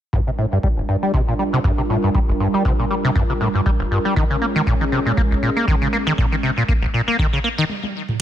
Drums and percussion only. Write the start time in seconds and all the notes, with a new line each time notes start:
0.13 kick
0.63 kick
1.14 kick
1.64 kick
2.15 kick
2.65 kick
3.15 kick
3.66 kick
4.16 kick
4.67 kick
5.17 kick
5.68 kick
6.18 kick
6.69 kick
7.19 kick
7.69 high tom
7.83 high tom
8.09 mid tom